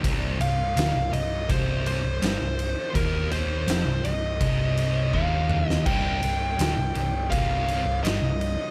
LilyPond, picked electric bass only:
\new Staff \with { instrumentName = "Picked electric bass" } { \clef bass \time 4/4 \key c \minor \tempo 4 = 82 c,,8 c,,8 d,,16 c,,16 c,,8 c,,8. c,,16 g,,16 c,,8 r16 | ees,,4 f,,16 c,,16 c,,8 c,,4 ees,,4 | c,,8 c,,8 d,,16 c,,16 c,,8 c,,8. c,,16 g,,16 c,,8 r16 | }